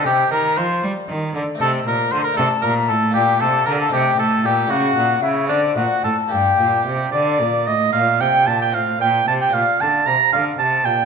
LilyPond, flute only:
\new Staff \with { instrumentName = "Flute" } { \time 6/8 \key c \dorian \tempo 4. = 76 g''8 bes''8 c'''8 r4. | \key g \minor a''8 bes''8 c'''16 bes''16 a''8 bes''8 a''8 | g''8 a''8 bes''16 a''16 g''8 a''8 g''8 | fis''4 e''8 d''8 fis''8 a''8 |
g''4. d''4 ees''8 | \key bes \major f''8 g''8 a''16 g''16 f''8 g''8 a''16 g''16 | f''8 a''8 bes''8 f''8 a''8 g''8 | }